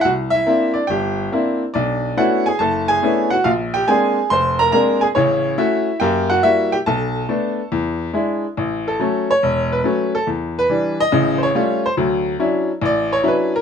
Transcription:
X:1
M:4/4
L:1/8
Q:"Swing" 1/4=141
K:A
V:1 name="Upright piano"
[Ff] [Ee]2 [Dd] [=G=g]2 z2 | [Dd]2 [Ff] [Gg] [Aa] [Gg]2 [Ff] | [=F=f] [=G=g] [_A_a]2 [=c=c'] [_B_b] [Bb] [Aa] | [Cc]2 [Ee]2 [=G=g] [Ff] e [Gg] |
[Aa]4 z4 | z A2 c2 B2 A | z B2 ^d2 [=c^c]2 =c | z4 d c B _B |]
V:2 name="Upright piano"
=C,,2 [_B,=CDE] z =G,,,2 [B,CDE] z | B,,,2 [A,B,CDE] z F,,,2 [A,B,CDE] z | _B,,,2 [_A,_B,=CD] z =F,,,2 [A,B,CD] z | [A,,,C,]2 [A,CF] z [F,,^A,]2 [=G,A,EF] z |
B,,,2 [A,B,D] z E,,2 [G,DE] z | A,,,2 [F,A,C] z E,,,2 [F,A,C] z | E,,2 [E,=G,D] z [A,,,C,]2 [G,A,C^E] z | [D,,F,]2 [F,CDE] z A,,,2 [F,CDE] z |]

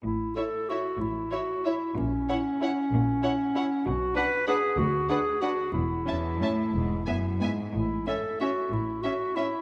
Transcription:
X:1
M:3/4
L:1/8
Q:1/4=186
K:A
V:1 name="Violin section"
z2 e2 e2 | z2 e2 e2 | z2 f2 f2 | z2 f2 f2 |
z2 f2 f2 | z2 f2 f2 | z2 a2 a2 | z2 g2 g2 |
z2 e2 e2 | z2 e2 e2 |]
V:2 name="Violin section"
z2 c2 c2 | z2 c2 c2 | z2 c2 c2 | z2 c2 c2 |
z2 B2 B2 | z2 B2 B2 | z2 e2 e2 | z2 e2 e2 |
z2 e2 e2 | z2 e2 e2 |]
V:3 name="Clarinet"
E2 A2 F2 | E2 F2 E2 | C6- | C6 |
F2 B2 G2 | F2 G2 F2 | E6- | E4- E z |
E2 A2 F2 | E2 F2 E2 |]
V:4 name="Viola section"
z2 E2 E2 | z2 E2 E2 | z2 E2 E2 | z2 E2 E2 |
z2 D2 D2 | z2 D2 D2 | z2 C2 C2 | z2 B,2 B,2 |
z2 C2 C2 | z2 C2 C2 |]
V:5 name="Cello section" clef=bass
A,,2 z4 | A,,2 z4 | ^A,,2 z4 | ^A,,2 z4 |
B,,2 z4 | D,,2 z4 | E,,2 E,,2 A,,2 | G,,2 F,,2 G,,2 |
A,,2 z4 | A,,2 z4 |]
V:6 name="Double bass section" clef=bass
A,,,2 z4 | A,,,2 z4 | ^A,,,2 z4 | ^A,,,2 z4 |
B,,,2 z4 | D,,2 z4 | E,,,2 z4 | E,,,2 z4 |
A,,,2 z4 | A,,,2 z4 |]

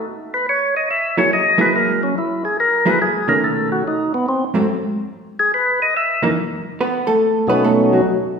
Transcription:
X:1
M:4/4
L:1/8
Q:"Swing" 1/4=142
K:Bmix
V:1 name="Tonewheel organ"
z B c d e c d B | ^A C E G A B G A | A F D B, ^B, z3 | z G B d e ^A z2 |
z3 [B,,F,A,CD]3 z2 |]
V:2 name="Hollow-body jazz guitar"
z4 z [F,^A,EG] z [F,A,EG]- | [F,^A,EG]2 z3 [F,A,EG] z [B,,D,=A,C]- | [B,,D,A,C]2 z3 [G,,F,A,^B,] z2 | z4 z [F,,E,^A,D] z2 |
[B,B] [A,A]2 [B,B] [A,A] [F,F] z2 |]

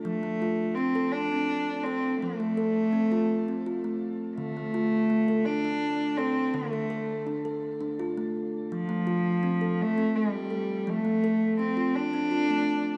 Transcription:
X:1
M:6/8
L:1/16
Q:3/8=55
K:F
V:1 name="Kalimba"
z A, F2 C A2 C2 z A2 | z A, A2 C F2 C F A,2 z | z A, F2 A, A2 D2 z A2 | z A, A2 D A2 D F A,2 z |
z A, F2 C A2 C2 z A2 | z A, A2 C F2 C F A,2 z |]
V:2 name="Kalimba" clef=bass
F,12 | F,12 | D,12 | D,12 |
F,12 | F,12 |]
V:3 name="Cello"
A,4 C2 D4 C2 | A,8- A,2 z2 | A,6 D4 C2 | A,4 z8 |
F,6 A,2 G,4 | A,4 C2 D6 |]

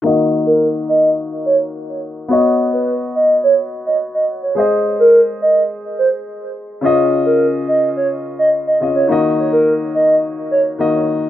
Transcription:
X:1
M:4/4
L:1/16
Q:1/4=106
K:Ebm
V:1 name="Soft synth lead"
z3 B2 z e2 z2 d z4 z | z3 =B2 z ^d2 ^c z2 d z d z c | z3 B2 z e2 z2 =c z4 z | z3 B2 z e2 d z2 e z e z d |
z3 B2 z e2 z2 d z4 z |]
V:2 name="Grand piano"
[E,B,Ge]16 | [=B,^F^c^d]16 | [A,A=ce]16 | [D,DFe]12- [D,DFe]2 [D,DFe]2 |
[E,B,Ge]12 [E,B,Ge]4 |]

